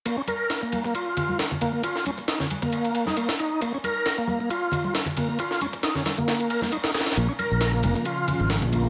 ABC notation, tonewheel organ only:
X:1
M:4/4
L:1/16
Q:"Swing 16ths" 1/4=135
K:Bbm
V:1 name="Tonewheel organ"
B, D B3 B,2 B, F4 z2 B, B, | F2 D z E D z B,4 E B, z E2 | B, D B3 B,2 B, F4 z2 B, B, | F2 D z E D z B,3 B B, E E A z |
B, D B3 B,2 B, F4 z2 B, B, |]